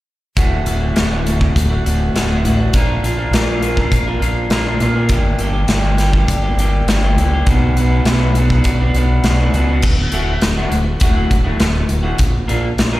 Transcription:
0.37 fingered electric bass D1, clean electric guitar D2 A2 D3 A3 F#4, kick, closed hi-hat
0.65 fingered electric bass D1, clean electric guitar A2 D3 A3 F#4, closed hi-hat
0.80 clean electric guitar D3 A3 F#4
0.94 fingered electric bass D1, clean electric guitar D2 A2 D3 A3 F#4, snare, closed hi-hat
1.24 clean electric guitar A2 D3 A3 F#4, closed hi-hat
1.40 clean electric guitar D3 A3 F#4, kick
1.56 fingered electric bass D1, kick, closed hi-hat
1.69 clean electric guitar D3 A3 F#4
1.84 fingered electric bass D1, clean electric guitar A2 D3 A3 F#4, closed hi-hat
2.14 fingered electric bass D1, clean electric guitar D2 A2 D3 A3 F#4, snare, closed hi-hat
2.30 clean electric guitar D3 A3 F#4
2.44 fingered electric bass A1, clean electric guitar A2 D3 A3 F#4, closed hi-hat
2.60 clean electric guitar D3 A3 F#4
2.73 fingered electric bass A#1, clean electric guitar A#2 F3 A#3 D4 F4 A#4, kick, closed hi-hat
3.02 fingered electric bass A#1, clean electric guitar A#3 D4 F4 A#4, closed hi-hat
3.17 clean electric guitar A#3 D4 F4 A#4
3.31 fingered electric bass A#1, clean electric guitar A#2 F3 A#3 D4 F4 A#4, snare, closed hi-hat
3.61 clean electric guitar A#3 D4 F4 A#4, closed hi-hat
3.77 clean electric guitar A#3 D4 F4 A#4, kick
3.91 fingered electric bass A#1, kick, closed hi-hat
4.07 clean electric guitar A#3 D4 F4 A#4
4.20 fingered electric bass A#1, clean electric guitar A#3 D4 F4 A#4, closed hi-hat
4.50 fingered electric bass A#1, clean electric guitar A#2 F3 A#3 D4 F4 A#4, snare, closed hi-hat
4.65 clean electric guitar A#3 D4 F4 A#4
4.80 fingered electric bass A#2, clean electric guitar A#3 D4 F4 A#4, closed hi-hat
4.94 clean electric guitar A#3 D4 F4 A#4
5.09 fingered electric bass G1, clean electric guitar G2 D3 G3 A#3 D4 G4, kick, closed hi-hat
5.39 fingered electric bass G1, clean electric guitar G3 A#3 D4 G4, closed hi-hat
5.53 clean electric guitar G3 A#3 D4 G4
5.68 fingered electric bass G1, clean electric guitar G2 D3 G3 A#3 D4 G4, snare, closed hi-hat
5.98 clean electric guitar G3 A#3 D4 G4, snare, closed hi-hat
6.13 clean electric guitar G3 A#3 D4 G4, kick
6.28 fingered electric bass G1, kick, closed hi-hat
6.43 clean electric guitar G3 A#3 D4 G4
6.56 fingered electric bass G1, clean electric guitar G3 A#3 D4 G4, closed hi-hat
6.85 fingered electric bass G1, clean electric guitar G2 D3 G3, snare, closed hi-hat
6.90 clean electric guitar A#3 D4 G4
7.04 clean electric guitar G3 A#3 D4 G4
7.16 fingered electric bass C#2, clean electric guitar G3 A#3 D4, closed hi-hat
7.21 clean electric guitar G4
7.33 clean electric guitar G3 A#3 D4 G4
7.47 fingered electric bass B1, clean electric guitar B2 F#3 B3 D4 F#4 B4, kick, closed hi-hat
7.74 fingered electric bass B1, clean electric guitar B3, closed hi-hat
7.78 clean electric guitar D4 F#4 B4
7.92 clean electric guitar B3 D4 F#4 B4
8.04 fingered electric bass B1, clean electric guitar B2 F#3 B3 D4 F#4 B4, snare, closed hi-hat
8.35 clean electric guitar B3 D4 F#4 B4, closed hi-hat
8.50 clean electric guitar B3 D4 F#4 B4, kick
8.64 fingered electric bass B1, kick, closed hi-hat
8.80 clean electric guitar B3 D4 F#4 B4
8.94 fingered electric bass B1, clean electric guitar B3 D4 F#4 B4, closed hi-hat
9.23 fingered electric bass B1, clean electric guitar B2 F#3 B3 D4 F#4 B4, snare, closed hi-hat
9.39 clean electric guitar B3 D4 F#4 B4
9.53 fingered electric bass C#2, clean electric guitar B3 D4 F#4 B4, closed hi-hat
9.68 clean electric guitar B3 D4 F#4 B4
9.82 fingered electric bass D1, kick, crash
10.12 fingered electric bass D1, clean electric guitar A2 D3 A3 F#4, closed hi-hat
10.41 fingered electric bass D1, snare, closed hi-hat
10.57 clean electric guitar A2 D3 A3 F#4
10.72 fingered electric bass D1, closed hi-hat
11.00 fingered electric bass D1, clean electric guitar A2 D3 A3 F#4, kick, closed hi-hat
11.16 clean electric guitar A2 D3 A3 F#4
11.31 fingered electric bass D1, kick, closed hi-hat
11.44 clean electric guitar A2 D3 A3 F#4
11.60 fingered electric bass D1, snare, closed hi-hat
11.89 fingered electric bass D1, closed hi-hat
12.03 clean electric guitar A2 D3 A3 F#4
12.18 fingered electric bass A#1, kick, closed hi-hat
12.48 fingered electric bass A#1, clean electric guitar A#3 D4 F4 A#4, closed hi-hat
12.78 fingered electric bass A#1, snare, closed hi-hat
12.93 clean electric guitar A#3 D4 F4 A#4

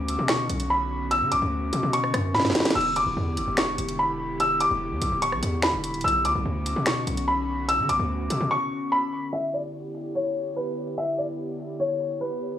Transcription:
Already playing: 808-style bass D2, analog synth pad D3 B3 C#4 F#4, grand piano D6
0.08 closed hi-hat
0.19 808-style bass B2
0.28 grand piano C#6, finger snap, snare, closed hi-hat
0.49 808-style bass B1, closed hi-hat
0.60 closed hi-hat
0.70 grand piano B5
1.11 grand piano E6, closed hi-hat
1.21 808-style bass D3
1.32 808-style bass B1, grand piano D6, closed hi-hat
1.42 808-style bass D2
1.73 808-style bass B2, closed hi-hat
1.83 808-style bass B2
1.93 grand piano C#6, closed hi-hat
2.04 cross-stick
2.14 808-style bass F#2, cross-stick, closed hi-hat
2.34 808-style bass B2, grand piano B5, snare
2.40 snare
2.45 808-style bass F#2, snare
2.50 snare
2.55 snare, closed hi-hat
2.60 snare
2.65 snare, closed hi-hat
2.70 snare, closed hi-hat
2.75 808-style bass E1, analog synth pad E4 G4, grand piano E6, crash
2.81 closed hi-hat
2.96 808-style bass F#1, grand piano D6, closed hi-hat
3.07 808-style bass D1
3.17 808-style bass E2
3.37 808-style bass G1, closed hi-hat
3.48 808-style bass E1
3.57 grand piano C#6, finger snap, snare, closed hi-hat
3.78 808-style bass E1, closed hi-hat
3.89 closed hi-hat
3.99 grand piano B5
4.40 grand piano E6, closed hi-hat
4.60 grand piano D6, closed hi-hat
4.71 808-style bass E1
4.91 808-style bass E2
5.02 808-style bass B1, closed hi-hat
5.12 808-style bass D1
5.22 grand piano C#6, closed hi-hat
5.32 808-style bass B1, cross-stick
5.43 808-style bass E2, closed hi-hat
5.62 grand piano B5, finger snap, snare
5.73 808-style bass E1
5.84 closed hi-hat
5.94 808-style bass D1, closed hi-hat
6.01 808-style bass B1, analog synth pad B3 C#4 F#4, grand piano E6, closed hi-hat
6.08 closed hi-hat
6.25 808-style bass D2, grand piano D6, closed hi-hat
6.35 808-style bass B1
6.45 808-style bass D2
6.66 closed hi-hat
6.76 808-style bass B2
6.86 grand piano C#6, finger snap, snare, closed hi-hat
7.07 808-style bass B1, closed hi-hat
7.17 closed hi-hat
7.28 grand piano B5
7.69 grand piano E6, closed hi-hat
7.79 808-style bass D3
7.89 808-style bass B1, grand piano D6, closed hi-hat
7.99 808-style bass D2
8.30 808-style bass B2, closed hi-hat
8.41 808-style bass B2
8.51 grand piano C#6
8.92 grand piano B5
9.33 analog synth pad D3 B3 E4 G4, grand piano E5, closed hi-hat
9.38 closed hi-hat
9.54 grand piano D5
9.64 closed hi-hat
9.95 closed hi-hat
10.15 grand piano C#5, closed hi-hat
10.56 grand piano B4
10.77 closed hi-hat
10.87 closed hi-hat
10.97 grand piano E5, closed hi-hat
11.18 grand piano D5
11.28 closed hi-hat
11.59 closed hi-hat
11.80 grand piano C#5, closed hi-hat
12.00 closed hi-hat
12.11 closed hi-hat
12.21 grand piano B4
12.52 closed hi-hat

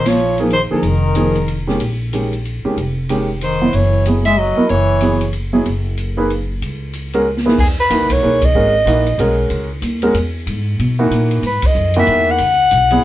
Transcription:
Already playing: upright bass A#1
0.06 trombone F3, soprano saxophone C#5, snare, ride
0.18 hi-hat pedal
0.38 grand piano F3 A#3 D#4 G#4, ride
0.50 trombone D#3, soprano saxophone C5, ride
0.70 trombone D#3, grand piano F3 A#3 D#4 G#4, soprano saxophone A#4, muted upright bass stroke
0.83 upright bass F1, ride
1.15 grand piano F3 A#3 D#4 G#4, hi-hat pedal, ride
1.35 ride
1.48 ride
1.67 grand piano D#3 G#3 C#4 G4, snare
1.80 upright bass A#1, ride
2.13 grand piano D#3 G#3 C#4 G4, hi-hat pedal, ride
2.33 ride
2.45 ride
2.64 grand piano D#3 G#3 C#4 G4, muted upright bass stroke
2.77 upright bass F1, ride
3.09 grand piano D#3 G#3 C#4 G4, hi-hat pedal, ride
3.41 trombone D#3, soprano saxophone C5, hi-hat pedal, ride
3.61 grand piano F#3 B3 E4 F#4
3.73 upright bass F#1, trombone E3, soprano saxophone C#5, ride
4.06 grand piano F#3 B3 E4 G#4, hi-hat pedal, ride
4.25 trombone G#3, soprano saxophone E5, ride
4.38 trombone F#3, soprano saxophone D#5
4.57 grand piano F#3 B3 E4 A#4, muted upright bass stroke
4.69 upright bass F#1, trombone E3, soprano saxophone C#5, ride
5.01 grand piano F#3 B3 E4 G#4, hi-hat pedal, ride
5.21 ride
5.33 ride
5.53 grand piano F#3 B3 E4 G#4
5.66 upright bass F#1, ride
5.97 hi-hat pedal, ride
6.17 grand piano A#3 D#4 G#4 B4
6.30 ride
6.62 upright bass C#2, ride
6.93 hi-hat pedal, ride
7.13 grand piano G#3 C#4 F#4 A#4, ride
7.37 snare
7.45 grand piano E3 A#3 D#4 G#4 B4, snare
7.58 upright bass E2, soprano saxophone G#4, kick, crash
7.80 soprano saxophone B4
7.90 upright bass D#2, grand piano E3 A#3 D#4 F#4, hi-hat pedal, ride
8.01 upright bass C#2
8.10 upright bass B1, soprano saxophone C#5, kick, ride
8.23 upright bass B1, grand piano A#3 D#4 G#4 B4
8.41 soprano saxophone D#5, kick, ride
8.54 upright bass G#1, grand piano G#3 C#4 F#4 A#4
8.86 upright bass A#1, grand piano E3 A#3 D#4 F#4, hi-hat pedal, ride
9.06 ride
9.18 upright bass B1, grand piano G#3 C#4 F#4 A#4, hi-hat pedal, ride
9.50 upright bass C#2, ride
9.82 upright bass D#2, hi-hat pedal, ride
10.02 grand piano G#3 C#4 F#4 A#4, ride
10.14 upright bass E2, ride
10.47 upright bass G#2, ride
10.79 upright bass B2, ride
10.99 grand piano E3 A#3 D#4 F#4
11.10 upright bass A#2, hi-hat pedal, ride
11.31 ride
11.42 upright bass G#2, soprano saxophone B4, ride
11.62 muted upright bass stroke, kick, ride
11.67 soprano saxophone D#5
11.74 upright bass F#2, hi-hat pedal
11.94 grand piano D#3 E3 A#3 F#4, ride
11.99 soprano saxophone E5
12.07 upright bass E2, ride
12.31 soprano saxophone F#5
12.38 upright bass C#2, ride
12.71 upright bass B1, hi-hat pedal, ride
12.91 grand piano F#3 B3 E4 G#4, ride

